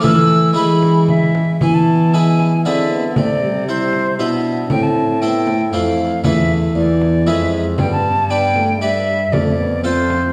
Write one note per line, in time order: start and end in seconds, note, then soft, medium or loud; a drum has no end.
0.00 0.55 E3 medium
0.00 0.52 E3 medium
0.00 0.53 A3 medium
0.00 0.58 A3 medium
0.00 0.53 E4 medium
0.00 0.54 B4 medium
0.00 0.55 E6 loud
0.00 frame drum medium
0.53 1.39 E3 medium
0.53 1.37 E3 medium
0.53 1.56 G#3 soft
0.53 1.35 G#3 medium
0.53 1.57 E4 soft
0.53 1.58 B4 soft
0.53 1.07 B5 medium
0.83 frame drum medium
1.08 1.57 E5 medium
1.08 frame drum medium
1.35 frame drum medium
1.61 2.66 E3 medium
1.61 2.61 E3 medium
1.61 2.66 B3 medium
1.61 1.76 G#5 medium
1.61 frame drum medium
1.75 2.16 A5 medium
2.14 2.51 G#3 soft
2.14 2.51 E4 soft
2.14 2.51 B4 medium
2.14 2.65 G#5 medium
2.39 frame drum soft
2.65 3.18 D3 medium
2.65 3.13 D3 medium
2.65 3.02 G#3 soft
2.65 2.90 C4 medium
2.65 3.02 E4 soft
2.65 3.03 B4 soft
2.65 3.16 E5 medium
2.91 3.17 B3 medium
3.16 4.15 C3 medium
3.16 4.21 C3 medium
3.16 3.43 A3 medium
3.16 3.67 D5 medium
3.16 frame drum medium
3.42 3.67 G3 medium
3.68 4.20 G3 medium
3.68 4.05 E4 soft
3.68 4.18 C5 medium
3.68 4.06 C5 soft
3.93 frame drum soft
4.18 4.66 B2 medium
4.18 4.69 B2 medium
4.18 4.72 D4 medium
4.18 4.56 E4 soft
4.18 4.56 C5 medium
4.18 4.69 E5 medium
4.70 5.69 A2 medium
4.70 5.74 A2 medium
4.70 5.21 C4 medium
4.70 4.85 G5 loud
4.70 frame drum medium
4.83 5.23 A5 medium
5.21 5.59 A3 soft
5.21 5.49 B3 medium
5.21 5.59 E4 soft
5.21 5.59 C5 soft
5.21 5.72 G5 medium
5.47 6.24 A3 medium
5.47 frame drum soft
5.72 6.23 F2 medium
5.72 6.20 F2 medium
5.72 6.10 E3 medium
5.72 6.10 A3 soft
5.72 6.10 C5 medium
5.72 6.23 F5 medium
6.24 6.74 E2 medium
6.24 6.71 E2 medium
6.24 6.71 A3 medium
6.24 6.77 A3 medium
6.24 6.72 E4 medium
6.24 6.72 B4 medium
6.24 6.53 E5 medium
6.24 frame drum medium
6.75 7.28 E2 medium
6.75 7.23 E2 soft
6.75 7.29 B3 medium
6.75 7.29 D5 medium
7.01 frame drum soft
7.26 7.80 F2 medium
7.26 7.74 F2 medium
7.26 7.64 G#3 medium
7.26 7.78 G#3 medium
7.26 7.64 E4 medium
7.26 7.64 B4 medium
7.26 7.61 E5 medium
7.78 9.28 G2 medium
7.78 9.32 G2 medium
7.78 8.11 B3 medium
7.78 7.91 G5 loud
7.78 frame drum medium
7.92 8.32 A5 loud
8.30 8.54 B3 medium
8.30 8.67 D4 medium
8.30 8.67 B4 soft
8.30 8.80 G5 loud
8.55 8.83 A3 medium
8.55 frame drum medium
8.81 9.34 G3 medium
8.81 9.18 D4 medium
8.81 9.19 B4 medium
8.81 9.34 E5 loud
9.32 10.33 F2 medium
9.32 9.58 A3 medium
9.32 9.84 D5 medium
9.32 frame drum medium
9.59 9.84 B3 medium
9.84 10.21 A3 soft
9.84 10.33 C4 medium
9.84 10.21 F4 soft
9.84 10.21 A4 medium
9.84 10.33 C5 medium
10.10 frame drum soft